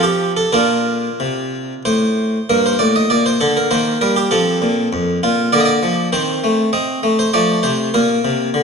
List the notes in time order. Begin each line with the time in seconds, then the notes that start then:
Already playing: F3
0.03 G4
0.37 A4
0.53 A#2 D4 F4 A#4
1.20 C3
1.85 A2 C5
2.50 G2 A#3 A#4
2.66 C5
2.79 A2 D5
2.96 D#5
3.10 A#2 D5
3.26 C5
3.41 D3 A4
3.57 A#4
3.71 D#3 A#3 C5
4.01 G3 A#4
4.16 G4
4.31 F3 C4 A4
4.62 A#2
4.93 F2
5.23 A#2 F4
5.53 D3 A#3 D5
5.60 D#5
5.65 D5
5.83 F3
6.13 D#3 C4 C5
6.44 A3
6.73 C4 D#5
7.03 A3
7.19 C5
7.34 F3 A3 D5
7.63 C3 C5
7.94 A#2 A#3 A#4
8.25 C3
8.54 D3